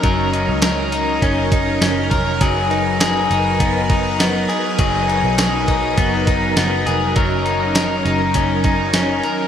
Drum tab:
HH |xxxxxxxx|xxxxxxxx|xxxxxxxx|xxxxxxxx|
TB |--x---x-|--x---x-|--x---x-|--x---x-|
SD |--o---o-|--o---o-|--o---o-|--o---o-|
BD |o---oo-o|o---oo--|o--ooo--|o---oo--|